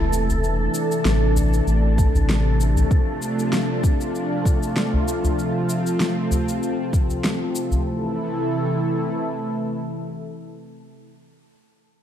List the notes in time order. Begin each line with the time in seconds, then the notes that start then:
Already playing: E1 C3 E3 A3 E4 A4
0.13 cabasa
0.30 udu, cabasa
0.43 D4, cabasa
0.74 cabasa
0.92 cabasa
1.05 A1, snare, cabasa
1.36 udu, cabasa
1.53 cabasa
1.67 A1, cabasa
1.98 kick, cabasa
2.15 A1, udu, cabasa
2.29 snare, cabasa
2.60 cabasa
2.76 udu, cabasa
2.90 F3 D4 F4, kick, cabasa
3.22 cabasa
3.39 cabasa
3.53 snare, cabasa
3.84 kick, cabasa
4.01 cabasa
4.15 cabasa
4.45 kick, cabasa
4.63 cabasa
4.77 snare, cabasa
4.94 udu
5.08 cabasa
5.24 udu, cabasa
5.38 C4, cabasa
5.69 cabasa
5.87 cabasa
6.00 snare, cabasa
6.31 udu, cabasa
6.49 cabasa
6.63 cabasa
6.93 kick, cabasa
7.09 udu, cabasa
7.24 snare, cabasa
7.55 cabasa
7.71 udu, cabasa
7.86 C3 E3 A3 E4 A4